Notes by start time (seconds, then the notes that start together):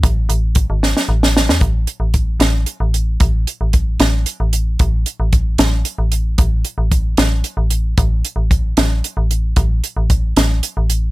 0.03 A1, kick, closed hi-hat
0.29 A1, closed hi-hat
0.55 kick, closed hi-hat
0.70 G#1
0.83 snare
0.97 snare
1.09 A1
1.23 snare
1.37 snare
1.48 E2, snare
1.61 A1, kick, closed hi-hat
1.87 closed hi-hat
2.00 A1
2.14 kick, closed hi-hat
2.40 A1, snare, closed hi-hat
2.66 closed hi-hat
2.80 A1
2.94 closed hi-hat
3.20 A1, kick, closed hi-hat
3.47 closed hi-hat
3.61 A1
3.73 kick, closed hi-hat
4.00 A1, snare, closed hi-hat
4.26 closed hi-hat
4.40 A1
4.53 closed hi-hat
4.79 A1, kick, closed hi-hat
5.06 closed hi-hat
5.20 A1
5.33 kick, closed hi-hat
5.58 A1, snare, closed hi-hat
5.85 closed hi-hat
5.98 A1
6.12 closed hi-hat
6.38 A1, kick, closed hi-hat
6.65 closed hi-hat
6.78 A1
6.92 kick, closed hi-hat
7.17 A1, snare, closed hi-hat
7.44 closed hi-hat
7.57 A1
7.70 closed hi-hat
7.98 A1, kick, closed hi-hat
8.25 closed hi-hat
8.36 A1
8.51 kick, closed hi-hat
8.77 A1, snare, closed hi-hat
9.04 closed hi-hat
9.17 A1
9.31 closed hi-hat
9.56 A1, kick, closed hi-hat
9.84 closed hi-hat
9.97 A1
10.10 kick, closed hi-hat
10.37 A1, snare, closed hi-hat
10.63 closed hi-hat
10.77 A1
10.90 closed hi-hat